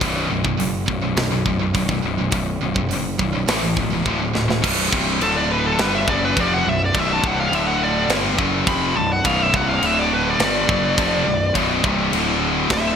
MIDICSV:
0, 0, Header, 1, 6, 480
1, 0, Start_track
1, 0, Key_signature, 2, "minor"
1, 0, Tempo, 576923
1, 10, Time_signature, 4, 2, 24, 8
1, 10781, End_track
2, 0, Start_track
2, 0, Title_t, "Lead electric guitar"
2, 0, Program_c, 0, 29
2, 4347, Note_on_c, 0, 69, 101
2, 4458, Note_off_c, 0, 69, 0
2, 4465, Note_on_c, 0, 74, 98
2, 4578, Note_off_c, 0, 74, 0
2, 4587, Note_on_c, 0, 71, 91
2, 4712, Note_off_c, 0, 71, 0
2, 4712, Note_on_c, 0, 69, 74
2, 4832, Note_off_c, 0, 69, 0
2, 4832, Note_on_c, 0, 71, 85
2, 4941, Note_off_c, 0, 71, 0
2, 4948, Note_on_c, 0, 76, 91
2, 5060, Note_off_c, 0, 76, 0
2, 5074, Note_on_c, 0, 74, 89
2, 5197, Note_off_c, 0, 74, 0
2, 5197, Note_on_c, 0, 71, 85
2, 5328, Note_off_c, 0, 71, 0
2, 5328, Note_on_c, 0, 74, 90
2, 5430, Note_off_c, 0, 74, 0
2, 5440, Note_on_c, 0, 78, 93
2, 5565, Note_off_c, 0, 78, 0
2, 5565, Note_on_c, 0, 76, 88
2, 5668, Note_off_c, 0, 76, 0
2, 5703, Note_on_c, 0, 74, 70
2, 5816, Note_off_c, 0, 74, 0
2, 5816, Note_on_c, 0, 76, 80
2, 5914, Note_off_c, 0, 76, 0
2, 5933, Note_on_c, 0, 81, 79
2, 6032, Note_off_c, 0, 81, 0
2, 6050, Note_on_c, 0, 78, 101
2, 6150, Note_off_c, 0, 78, 0
2, 6160, Note_on_c, 0, 77, 96
2, 6280, Note_off_c, 0, 77, 0
2, 6280, Note_on_c, 0, 76, 87
2, 6379, Note_off_c, 0, 76, 0
2, 6382, Note_on_c, 0, 78, 83
2, 6496, Note_off_c, 0, 78, 0
2, 6518, Note_on_c, 0, 74, 104
2, 6741, Note_off_c, 0, 74, 0
2, 7220, Note_on_c, 0, 83, 90
2, 7451, Note_off_c, 0, 83, 0
2, 7458, Note_on_c, 0, 81, 100
2, 7574, Note_off_c, 0, 81, 0
2, 7594, Note_on_c, 0, 78, 86
2, 7704, Note_off_c, 0, 78, 0
2, 7704, Note_on_c, 0, 77, 87
2, 7843, Note_off_c, 0, 77, 0
2, 7843, Note_on_c, 0, 76, 93
2, 7946, Note_off_c, 0, 76, 0
2, 7956, Note_on_c, 0, 78, 112
2, 8062, Note_off_c, 0, 78, 0
2, 8066, Note_on_c, 0, 77, 106
2, 8202, Note_off_c, 0, 77, 0
2, 8202, Note_on_c, 0, 76, 103
2, 8312, Note_off_c, 0, 76, 0
2, 8312, Note_on_c, 0, 74, 98
2, 8420, Note_off_c, 0, 74, 0
2, 8438, Note_on_c, 0, 71, 98
2, 8564, Note_off_c, 0, 71, 0
2, 8564, Note_on_c, 0, 74, 81
2, 8666, Note_off_c, 0, 74, 0
2, 8684, Note_on_c, 0, 74, 105
2, 9598, Note_off_c, 0, 74, 0
2, 10594, Note_on_c, 0, 76, 96
2, 10781, Note_off_c, 0, 76, 0
2, 10781, End_track
3, 0, Start_track
3, 0, Title_t, "Distorted electric guitar"
3, 0, Program_c, 1, 30
3, 9, Note_on_c, 1, 35, 93
3, 14, Note_on_c, 1, 42, 88
3, 16, Note_on_c, 1, 47, 108
3, 236, Note_off_c, 1, 35, 0
3, 238, Note_off_c, 1, 42, 0
3, 239, Note_off_c, 1, 47, 0
3, 248, Note_on_c, 1, 42, 90
3, 254, Note_on_c, 1, 35, 70
3, 366, Note_off_c, 1, 42, 0
3, 369, Note_off_c, 1, 35, 0
3, 376, Note_on_c, 1, 42, 83
3, 379, Note_on_c, 1, 35, 66
3, 481, Note_off_c, 1, 35, 0
3, 481, Note_off_c, 1, 42, 0
3, 491, Note_on_c, 1, 35, 81
3, 491, Note_on_c, 1, 42, 86
3, 707, Note_off_c, 1, 35, 0
3, 707, Note_off_c, 1, 42, 0
3, 731, Note_on_c, 1, 42, 91
3, 734, Note_on_c, 1, 35, 76
3, 841, Note_off_c, 1, 42, 0
3, 846, Note_off_c, 1, 35, 0
3, 851, Note_on_c, 1, 42, 86
3, 856, Note_on_c, 1, 35, 74
3, 958, Note_off_c, 1, 35, 0
3, 964, Note_off_c, 1, 42, 0
3, 968, Note_on_c, 1, 35, 76
3, 974, Note_on_c, 1, 42, 92
3, 1085, Note_off_c, 1, 42, 0
3, 1090, Note_off_c, 1, 35, 0
3, 1095, Note_on_c, 1, 42, 81
3, 1101, Note_on_c, 1, 35, 73
3, 1210, Note_off_c, 1, 42, 0
3, 1214, Note_off_c, 1, 35, 0
3, 1220, Note_on_c, 1, 42, 71
3, 1224, Note_on_c, 1, 35, 74
3, 1331, Note_off_c, 1, 35, 0
3, 1334, Note_off_c, 1, 42, 0
3, 1341, Note_on_c, 1, 35, 60
3, 1344, Note_on_c, 1, 42, 92
3, 1448, Note_off_c, 1, 35, 0
3, 1458, Note_off_c, 1, 42, 0
3, 1458, Note_on_c, 1, 35, 79
3, 1466, Note_on_c, 1, 42, 93
3, 1575, Note_off_c, 1, 35, 0
3, 1577, Note_off_c, 1, 42, 0
3, 1587, Note_on_c, 1, 42, 80
3, 1590, Note_on_c, 1, 35, 70
3, 1700, Note_off_c, 1, 42, 0
3, 1701, Note_off_c, 1, 35, 0
3, 1710, Note_on_c, 1, 42, 83
3, 1717, Note_on_c, 1, 35, 78
3, 1810, Note_off_c, 1, 42, 0
3, 1813, Note_off_c, 1, 35, 0
3, 1820, Note_on_c, 1, 42, 81
3, 1822, Note_on_c, 1, 35, 66
3, 1932, Note_off_c, 1, 35, 0
3, 1937, Note_off_c, 1, 42, 0
3, 1942, Note_on_c, 1, 35, 79
3, 1947, Note_on_c, 1, 42, 85
3, 2154, Note_off_c, 1, 35, 0
3, 2156, Note_off_c, 1, 42, 0
3, 2185, Note_on_c, 1, 42, 76
3, 2188, Note_on_c, 1, 35, 63
3, 2299, Note_off_c, 1, 42, 0
3, 2301, Note_off_c, 1, 35, 0
3, 2312, Note_on_c, 1, 42, 62
3, 2314, Note_on_c, 1, 35, 62
3, 2423, Note_off_c, 1, 42, 0
3, 2424, Note_off_c, 1, 35, 0
3, 2438, Note_on_c, 1, 35, 78
3, 2441, Note_on_c, 1, 42, 88
3, 2642, Note_off_c, 1, 35, 0
3, 2644, Note_off_c, 1, 42, 0
3, 2672, Note_on_c, 1, 35, 71
3, 2672, Note_on_c, 1, 42, 85
3, 2779, Note_off_c, 1, 42, 0
3, 2783, Note_off_c, 1, 35, 0
3, 2789, Note_on_c, 1, 42, 85
3, 2796, Note_on_c, 1, 35, 64
3, 2898, Note_off_c, 1, 35, 0
3, 2898, Note_off_c, 1, 42, 0
3, 2901, Note_on_c, 1, 52, 99
3, 2902, Note_on_c, 1, 45, 91
3, 2907, Note_on_c, 1, 57, 96
3, 3004, Note_off_c, 1, 45, 0
3, 3004, Note_off_c, 1, 52, 0
3, 3006, Note_off_c, 1, 57, 0
3, 3026, Note_on_c, 1, 52, 69
3, 3036, Note_on_c, 1, 45, 64
3, 3141, Note_off_c, 1, 52, 0
3, 3142, Note_off_c, 1, 45, 0
3, 3150, Note_on_c, 1, 52, 63
3, 3152, Note_on_c, 1, 45, 54
3, 3263, Note_off_c, 1, 52, 0
3, 3264, Note_off_c, 1, 45, 0
3, 3272, Note_on_c, 1, 52, 86
3, 3276, Note_on_c, 1, 45, 67
3, 3380, Note_off_c, 1, 45, 0
3, 3384, Note_off_c, 1, 52, 0
3, 3385, Note_on_c, 1, 38, 87
3, 3390, Note_on_c, 1, 45, 100
3, 3392, Note_on_c, 1, 50, 110
3, 3485, Note_off_c, 1, 45, 0
3, 3486, Note_off_c, 1, 38, 0
3, 3490, Note_off_c, 1, 50, 0
3, 3495, Note_on_c, 1, 45, 70
3, 3496, Note_on_c, 1, 38, 72
3, 3606, Note_off_c, 1, 45, 0
3, 3608, Note_off_c, 1, 38, 0
3, 3616, Note_on_c, 1, 45, 83
3, 3618, Note_on_c, 1, 38, 67
3, 3717, Note_off_c, 1, 45, 0
3, 3723, Note_off_c, 1, 38, 0
3, 3727, Note_on_c, 1, 45, 84
3, 3733, Note_on_c, 1, 38, 67
3, 3841, Note_off_c, 1, 38, 0
3, 3844, Note_on_c, 1, 35, 92
3, 3848, Note_off_c, 1, 45, 0
3, 3851, Note_on_c, 1, 42, 85
3, 3855, Note_on_c, 1, 47, 108
3, 4074, Note_off_c, 1, 35, 0
3, 4078, Note_on_c, 1, 36, 92
3, 4080, Note_off_c, 1, 42, 0
3, 4083, Note_off_c, 1, 47, 0
3, 4084, Note_on_c, 1, 43, 100
3, 4087, Note_on_c, 1, 48, 113
3, 4320, Note_off_c, 1, 36, 0
3, 4323, Note_off_c, 1, 43, 0
3, 4325, Note_off_c, 1, 48, 0
3, 4329, Note_on_c, 1, 38, 90
3, 4333, Note_on_c, 1, 45, 96
3, 4336, Note_on_c, 1, 50, 103
3, 4802, Note_off_c, 1, 50, 0
3, 4806, Note_off_c, 1, 38, 0
3, 4808, Note_off_c, 1, 45, 0
3, 4811, Note_on_c, 1, 43, 95
3, 4812, Note_on_c, 1, 50, 99
3, 4816, Note_on_c, 1, 55, 101
3, 5047, Note_off_c, 1, 43, 0
3, 5047, Note_off_c, 1, 50, 0
3, 5050, Note_off_c, 1, 55, 0
3, 5058, Note_on_c, 1, 42, 94
3, 5061, Note_on_c, 1, 49, 100
3, 5071, Note_on_c, 1, 54, 103
3, 5291, Note_off_c, 1, 42, 0
3, 5292, Note_off_c, 1, 49, 0
3, 5297, Note_off_c, 1, 54, 0
3, 5305, Note_on_c, 1, 41, 84
3, 5307, Note_on_c, 1, 48, 103
3, 5316, Note_on_c, 1, 53, 114
3, 5534, Note_off_c, 1, 41, 0
3, 5535, Note_off_c, 1, 48, 0
3, 5540, Note_off_c, 1, 53, 0
3, 5551, Note_on_c, 1, 35, 71
3, 5554, Note_on_c, 1, 42, 83
3, 5736, Note_off_c, 1, 35, 0
3, 5738, Note_off_c, 1, 42, 0
3, 5774, Note_on_c, 1, 35, 97
3, 5779, Note_on_c, 1, 42, 92
3, 5779, Note_on_c, 1, 47, 110
3, 6009, Note_off_c, 1, 35, 0
3, 6011, Note_off_c, 1, 42, 0
3, 6011, Note_off_c, 1, 47, 0
3, 6018, Note_on_c, 1, 36, 100
3, 6021, Note_on_c, 1, 43, 100
3, 6023, Note_on_c, 1, 48, 102
3, 6251, Note_off_c, 1, 36, 0
3, 6252, Note_off_c, 1, 43, 0
3, 6253, Note_off_c, 1, 48, 0
3, 6265, Note_on_c, 1, 38, 99
3, 6266, Note_on_c, 1, 45, 92
3, 6274, Note_on_c, 1, 50, 96
3, 6734, Note_off_c, 1, 38, 0
3, 6735, Note_off_c, 1, 45, 0
3, 6735, Note_off_c, 1, 50, 0
3, 6743, Note_on_c, 1, 43, 88
3, 6745, Note_on_c, 1, 50, 102
3, 6750, Note_on_c, 1, 55, 102
3, 6969, Note_off_c, 1, 43, 0
3, 6972, Note_on_c, 1, 42, 92
3, 6974, Note_off_c, 1, 50, 0
3, 6976, Note_off_c, 1, 55, 0
3, 6978, Note_on_c, 1, 49, 103
3, 6979, Note_on_c, 1, 54, 115
3, 7207, Note_off_c, 1, 42, 0
3, 7210, Note_off_c, 1, 49, 0
3, 7211, Note_off_c, 1, 54, 0
3, 7217, Note_on_c, 1, 41, 91
3, 7223, Note_on_c, 1, 48, 109
3, 7225, Note_on_c, 1, 53, 116
3, 7450, Note_off_c, 1, 41, 0
3, 7452, Note_off_c, 1, 48, 0
3, 7454, Note_off_c, 1, 53, 0
3, 7459, Note_on_c, 1, 35, 73
3, 7464, Note_on_c, 1, 42, 76
3, 7650, Note_off_c, 1, 35, 0
3, 7652, Note_off_c, 1, 42, 0
3, 7703, Note_on_c, 1, 35, 85
3, 7707, Note_on_c, 1, 42, 101
3, 7710, Note_on_c, 1, 47, 114
3, 7932, Note_off_c, 1, 35, 0
3, 7934, Note_off_c, 1, 42, 0
3, 7936, Note_off_c, 1, 47, 0
3, 7938, Note_on_c, 1, 36, 88
3, 7943, Note_on_c, 1, 43, 97
3, 7946, Note_on_c, 1, 48, 104
3, 8169, Note_off_c, 1, 36, 0
3, 8172, Note_off_c, 1, 43, 0
3, 8172, Note_on_c, 1, 38, 103
3, 8174, Note_off_c, 1, 48, 0
3, 8180, Note_on_c, 1, 45, 95
3, 8184, Note_on_c, 1, 50, 120
3, 8640, Note_off_c, 1, 38, 0
3, 8642, Note_off_c, 1, 50, 0
3, 8643, Note_on_c, 1, 43, 98
3, 8649, Note_off_c, 1, 45, 0
3, 8652, Note_on_c, 1, 50, 113
3, 8656, Note_on_c, 1, 55, 110
3, 8880, Note_off_c, 1, 43, 0
3, 8883, Note_off_c, 1, 50, 0
3, 8883, Note_on_c, 1, 42, 86
3, 8886, Note_on_c, 1, 49, 97
3, 8888, Note_off_c, 1, 55, 0
3, 8893, Note_on_c, 1, 54, 104
3, 9119, Note_off_c, 1, 42, 0
3, 9122, Note_off_c, 1, 49, 0
3, 9122, Note_on_c, 1, 41, 95
3, 9124, Note_off_c, 1, 54, 0
3, 9128, Note_on_c, 1, 53, 113
3, 9129, Note_on_c, 1, 48, 104
3, 9360, Note_off_c, 1, 41, 0
3, 9362, Note_off_c, 1, 48, 0
3, 9363, Note_off_c, 1, 53, 0
3, 9364, Note_on_c, 1, 35, 64
3, 9365, Note_on_c, 1, 42, 76
3, 9560, Note_off_c, 1, 35, 0
3, 9560, Note_off_c, 1, 42, 0
3, 9604, Note_on_c, 1, 35, 99
3, 9611, Note_on_c, 1, 42, 101
3, 9614, Note_on_c, 1, 47, 115
3, 9840, Note_off_c, 1, 35, 0
3, 9844, Note_off_c, 1, 42, 0
3, 9845, Note_off_c, 1, 47, 0
3, 9849, Note_on_c, 1, 36, 104
3, 9851, Note_on_c, 1, 43, 101
3, 9857, Note_on_c, 1, 48, 107
3, 10082, Note_off_c, 1, 36, 0
3, 10083, Note_off_c, 1, 43, 0
3, 10086, Note_off_c, 1, 48, 0
3, 10094, Note_on_c, 1, 38, 95
3, 10097, Note_on_c, 1, 50, 114
3, 10099, Note_on_c, 1, 45, 107
3, 10556, Note_off_c, 1, 38, 0
3, 10565, Note_off_c, 1, 50, 0
3, 10566, Note_off_c, 1, 45, 0
3, 10566, Note_on_c, 1, 38, 93
3, 10574, Note_on_c, 1, 45, 117
3, 10579, Note_on_c, 1, 50, 111
3, 10781, Note_off_c, 1, 38, 0
3, 10781, Note_off_c, 1, 45, 0
3, 10781, Note_off_c, 1, 50, 0
3, 10781, End_track
4, 0, Start_track
4, 0, Title_t, "Distorted electric guitar"
4, 0, Program_c, 2, 30
4, 2402, Note_on_c, 2, 35, 81
4, 2402, Note_on_c, 2, 42, 86
4, 2624, Note_off_c, 2, 35, 0
4, 2625, Note_off_c, 2, 42, 0
4, 10781, End_track
5, 0, Start_track
5, 0, Title_t, "Picked electric bass"
5, 0, Program_c, 3, 34
5, 12, Note_on_c, 3, 23, 94
5, 226, Note_off_c, 3, 23, 0
5, 248, Note_on_c, 3, 23, 88
5, 464, Note_off_c, 3, 23, 0
5, 496, Note_on_c, 3, 30, 93
5, 708, Note_off_c, 3, 30, 0
5, 729, Note_on_c, 3, 23, 77
5, 945, Note_off_c, 3, 23, 0
5, 971, Note_on_c, 3, 35, 91
5, 1186, Note_off_c, 3, 35, 0
5, 1211, Note_on_c, 3, 23, 91
5, 1426, Note_off_c, 3, 23, 0
5, 1449, Note_on_c, 3, 23, 90
5, 1665, Note_off_c, 3, 23, 0
5, 1687, Note_on_c, 3, 23, 78
5, 1904, Note_off_c, 3, 23, 0
5, 1931, Note_on_c, 3, 23, 104
5, 2147, Note_off_c, 3, 23, 0
5, 2167, Note_on_c, 3, 23, 85
5, 2385, Note_off_c, 3, 23, 0
5, 2399, Note_on_c, 3, 30, 97
5, 2621, Note_off_c, 3, 30, 0
5, 2657, Note_on_c, 3, 23, 83
5, 2871, Note_off_c, 3, 23, 0
5, 2892, Note_on_c, 3, 33, 94
5, 3108, Note_off_c, 3, 33, 0
5, 3132, Note_on_c, 3, 25, 92
5, 3348, Note_off_c, 3, 25, 0
5, 3375, Note_on_c, 3, 26, 74
5, 3590, Note_off_c, 3, 26, 0
5, 3615, Note_on_c, 3, 26, 87
5, 3830, Note_off_c, 3, 26, 0
5, 3856, Note_on_c, 3, 23, 98
5, 4080, Note_off_c, 3, 23, 0
5, 4096, Note_on_c, 3, 24, 104
5, 4320, Note_off_c, 3, 24, 0
5, 4335, Note_on_c, 3, 26, 113
5, 4783, Note_off_c, 3, 26, 0
5, 4819, Note_on_c, 3, 31, 101
5, 5042, Note_off_c, 3, 31, 0
5, 5056, Note_on_c, 3, 30, 107
5, 5280, Note_off_c, 3, 30, 0
5, 5296, Note_on_c, 3, 29, 94
5, 5520, Note_off_c, 3, 29, 0
5, 5533, Note_on_c, 3, 23, 75
5, 5758, Note_off_c, 3, 23, 0
5, 5774, Note_on_c, 3, 23, 98
5, 5999, Note_off_c, 3, 23, 0
5, 6017, Note_on_c, 3, 24, 103
5, 6240, Note_off_c, 3, 24, 0
5, 6248, Note_on_c, 3, 26, 112
5, 6699, Note_off_c, 3, 26, 0
5, 6728, Note_on_c, 3, 31, 105
5, 6955, Note_off_c, 3, 31, 0
5, 6975, Note_on_c, 3, 30, 105
5, 7199, Note_off_c, 3, 30, 0
5, 7211, Note_on_c, 3, 29, 88
5, 7436, Note_off_c, 3, 29, 0
5, 7450, Note_on_c, 3, 23, 69
5, 7676, Note_off_c, 3, 23, 0
5, 7694, Note_on_c, 3, 23, 98
5, 7918, Note_off_c, 3, 23, 0
5, 7937, Note_on_c, 3, 24, 111
5, 8159, Note_off_c, 3, 24, 0
5, 8168, Note_on_c, 3, 26, 100
5, 8618, Note_off_c, 3, 26, 0
5, 8651, Note_on_c, 3, 31, 103
5, 8875, Note_off_c, 3, 31, 0
5, 8891, Note_on_c, 3, 30, 113
5, 9115, Note_off_c, 3, 30, 0
5, 9132, Note_on_c, 3, 29, 90
5, 9356, Note_off_c, 3, 29, 0
5, 9366, Note_on_c, 3, 23, 81
5, 9592, Note_off_c, 3, 23, 0
5, 9612, Note_on_c, 3, 23, 106
5, 9834, Note_off_c, 3, 23, 0
5, 9849, Note_on_c, 3, 24, 102
5, 10073, Note_off_c, 3, 24, 0
5, 10088, Note_on_c, 3, 26, 95
5, 10534, Note_off_c, 3, 26, 0
5, 10570, Note_on_c, 3, 26, 105
5, 10781, Note_off_c, 3, 26, 0
5, 10781, End_track
6, 0, Start_track
6, 0, Title_t, "Drums"
6, 11, Note_on_c, 9, 36, 97
6, 12, Note_on_c, 9, 46, 58
6, 94, Note_off_c, 9, 36, 0
6, 95, Note_off_c, 9, 46, 0
6, 371, Note_on_c, 9, 36, 88
6, 454, Note_off_c, 9, 36, 0
6, 497, Note_on_c, 9, 46, 60
6, 580, Note_off_c, 9, 46, 0
6, 732, Note_on_c, 9, 36, 88
6, 815, Note_off_c, 9, 36, 0
6, 972, Note_on_c, 9, 46, 58
6, 978, Note_on_c, 9, 38, 124
6, 1055, Note_off_c, 9, 46, 0
6, 1061, Note_off_c, 9, 38, 0
6, 1213, Note_on_c, 9, 36, 77
6, 1296, Note_off_c, 9, 36, 0
6, 1452, Note_on_c, 9, 46, 55
6, 1453, Note_on_c, 9, 36, 82
6, 1536, Note_off_c, 9, 36, 0
6, 1536, Note_off_c, 9, 46, 0
6, 1572, Note_on_c, 9, 36, 83
6, 1655, Note_off_c, 9, 36, 0
6, 1928, Note_on_c, 9, 46, 54
6, 1933, Note_on_c, 9, 36, 112
6, 2012, Note_off_c, 9, 46, 0
6, 2016, Note_off_c, 9, 36, 0
6, 2295, Note_on_c, 9, 36, 88
6, 2379, Note_off_c, 9, 36, 0
6, 2420, Note_on_c, 9, 46, 59
6, 2503, Note_off_c, 9, 46, 0
6, 2657, Note_on_c, 9, 36, 87
6, 2740, Note_off_c, 9, 36, 0
6, 2895, Note_on_c, 9, 46, 62
6, 2901, Note_on_c, 9, 38, 126
6, 2978, Note_off_c, 9, 46, 0
6, 2984, Note_off_c, 9, 38, 0
6, 3135, Note_on_c, 9, 36, 78
6, 3219, Note_off_c, 9, 36, 0
6, 3376, Note_on_c, 9, 36, 79
6, 3459, Note_off_c, 9, 36, 0
6, 3621, Note_on_c, 9, 38, 87
6, 3704, Note_off_c, 9, 38, 0
6, 3748, Note_on_c, 9, 38, 91
6, 3832, Note_off_c, 9, 38, 0
6, 3859, Note_on_c, 9, 36, 110
6, 3861, Note_on_c, 9, 49, 124
6, 3861, Note_on_c, 9, 57, 65
6, 3942, Note_off_c, 9, 36, 0
6, 3944, Note_off_c, 9, 49, 0
6, 3944, Note_off_c, 9, 57, 0
6, 4098, Note_on_c, 9, 36, 113
6, 4181, Note_off_c, 9, 36, 0
6, 4337, Note_on_c, 9, 57, 61
6, 4420, Note_off_c, 9, 57, 0
6, 4814, Note_on_c, 9, 57, 66
6, 4820, Note_on_c, 9, 38, 121
6, 4898, Note_off_c, 9, 57, 0
6, 4903, Note_off_c, 9, 38, 0
6, 5056, Note_on_c, 9, 36, 109
6, 5139, Note_off_c, 9, 36, 0
6, 5298, Note_on_c, 9, 36, 108
6, 5300, Note_on_c, 9, 57, 64
6, 5381, Note_off_c, 9, 36, 0
6, 5383, Note_off_c, 9, 57, 0
6, 5779, Note_on_c, 9, 36, 106
6, 5781, Note_on_c, 9, 57, 63
6, 5862, Note_off_c, 9, 36, 0
6, 5865, Note_off_c, 9, 57, 0
6, 6020, Note_on_c, 9, 36, 125
6, 6104, Note_off_c, 9, 36, 0
6, 6265, Note_on_c, 9, 57, 63
6, 6349, Note_off_c, 9, 57, 0
6, 6736, Note_on_c, 9, 57, 76
6, 6742, Note_on_c, 9, 38, 118
6, 6819, Note_off_c, 9, 57, 0
6, 6825, Note_off_c, 9, 38, 0
6, 6976, Note_on_c, 9, 36, 105
6, 7060, Note_off_c, 9, 36, 0
6, 7214, Note_on_c, 9, 36, 109
6, 7214, Note_on_c, 9, 57, 63
6, 7297, Note_off_c, 9, 36, 0
6, 7297, Note_off_c, 9, 57, 0
6, 7695, Note_on_c, 9, 36, 108
6, 7699, Note_on_c, 9, 57, 64
6, 7778, Note_off_c, 9, 36, 0
6, 7782, Note_off_c, 9, 57, 0
6, 7935, Note_on_c, 9, 36, 113
6, 8019, Note_off_c, 9, 36, 0
6, 8175, Note_on_c, 9, 57, 65
6, 8258, Note_off_c, 9, 57, 0
6, 8650, Note_on_c, 9, 57, 64
6, 8656, Note_on_c, 9, 38, 114
6, 8733, Note_off_c, 9, 57, 0
6, 8739, Note_off_c, 9, 38, 0
6, 8894, Note_on_c, 9, 36, 105
6, 8977, Note_off_c, 9, 36, 0
6, 9135, Note_on_c, 9, 36, 113
6, 9139, Note_on_c, 9, 57, 59
6, 9218, Note_off_c, 9, 36, 0
6, 9223, Note_off_c, 9, 57, 0
6, 9612, Note_on_c, 9, 36, 101
6, 9615, Note_on_c, 9, 57, 59
6, 9695, Note_off_c, 9, 36, 0
6, 9698, Note_off_c, 9, 57, 0
6, 9851, Note_on_c, 9, 36, 110
6, 9934, Note_off_c, 9, 36, 0
6, 10092, Note_on_c, 9, 57, 61
6, 10175, Note_off_c, 9, 57, 0
6, 10566, Note_on_c, 9, 57, 77
6, 10569, Note_on_c, 9, 36, 110
6, 10572, Note_on_c, 9, 38, 126
6, 10649, Note_off_c, 9, 57, 0
6, 10652, Note_off_c, 9, 36, 0
6, 10655, Note_off_c, 9, 38, 0
6, 10781, End_track
0, 0, End_of_file